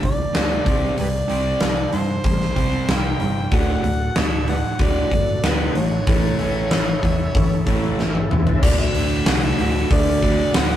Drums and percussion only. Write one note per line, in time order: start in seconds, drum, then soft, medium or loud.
0.03 kick medium
0.03 open hi-hat medium
0.35 snare loud
0.35 open hi-hat medium
0.66 kick loud
0.66 open hi-hat medium
0.98 open hi-hat medium
1.29 open hi-hat soft
1.60 snare loud
1.60 open hi-hat medium
1.93 open hi-hat medium
2.24 kick loud
2.24 open hi-hat medium
2.41 snare soft
2.56 kick medium
2.56 open hi-hat medium
2.89 snare loud
2.89 open hi-hat medium
3.20 open hi-hat soft
3.52 kick loud
3.52 open hi-hat medium
3.84 open hi-hat medium
4.16 snare loud
4.16 open hi-hat medium
4.48 open hi-hat medium
4.79 kick loud
4.79 open hi-hat medium
5.11 kick medium
5.11 open hi-hat medium
5.44 snare loud
5.44 open hi-hat medium
5.75 open hi-hat medium
6.07 kick loud
6.07 open hi-hat medium
6.39 open hi-hat medium
6.71 snare loud
6.71 open hi-hat medium
7.03 kick medium
7.03 open hi-hat soft
7.35 kick loud
7.35 open hi-hat medium
7.67 kick medium
7.67 open hi-hat medium
7.99 snare medium
8.15 high tom medium
8.31 mid tom medium
8.47 floor tom medium
8.63 kick loud
8.63 crash loud
8.95 open hi-hat medium
9.26 snare loud
9.26 open hi-hat loud
9.59 open hi-hat medium
9.90 kick loud
9.90 open hi-hat loud
10.22 kick medium
10.22 open hi-hat medium
10.54 snare loud
10.54 open hi-hat medium